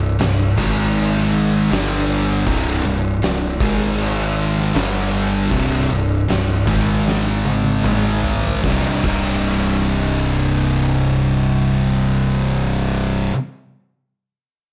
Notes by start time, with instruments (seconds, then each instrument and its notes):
Already playing: picked electric bass C1, distorted electric guitar C2 G2
0.19 picked electric bass C1, distorted electric guitar C2 G2, snare, crash
0.58 picked electric bass G#1, distorted electric guitar G#2 D#3 G#3, kick, crash
0.96 crash
1.17 snare
1.71 picked electric bass G1, distorted electric guitar G2 D3 G3, snare, crash
2.46 picked electric bass C1, distorted electric guitar C2 G2 C3, kick, crash
2.84 picked electric bass C1, distorted electric guitar C2 G2
3.22 picked electric bass C1, distorted electric guitar C2 G2, snare, crash
3.60 picked electric bass G#1, distorted electric guitar G#2 D#3 G#3, kick
3.98 crash
4.58 snare
4.74 picked electric bass G1, distorted electric guitar G2 D3 G3, snare, crash
5.51 picked electric bass C1, distorted electric guitar C2 G2 C3, kick, crash
5.90 picked electric bass C1, distorted electric guitar C2 G2
6.28 picked electric bass C1, distorted electric guitar C2 G2, snare, crash
6.67 picked electric bass G#1, distorted electric guitar G#2 D#3 G#3, kick
7.08 snare
7.45 high tom
7.64 high tom
7.84 picked electric bass G#1, distorted electric guitar G#2 D#3 G#3, mid tom
8.23 floor tom
8.44 floor tom
8.64 picked electric bass C1, distorted electric guitar C2 G2 C3 G3, kick, snare
8.68 distorted electric guitar D#4
9.03 picked electric bass C1, distorted electric guitar C2 G2 C3 G3, kick, crash
9.08 distorted electric guitar D#4